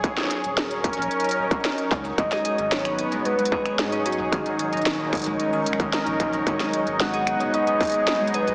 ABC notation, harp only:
X:1
M:4/4
L:1/16
Q:1/4=112
K:G#m
V:1 name="Harp"
z16 | G, G G G,, C C G G, G, G, G G G,, C C G | D, D, D, D D D,, G, G, D D, D, D, D D D,, G, | C G G, G, G, G G G,, C C G G, G, G, G G |]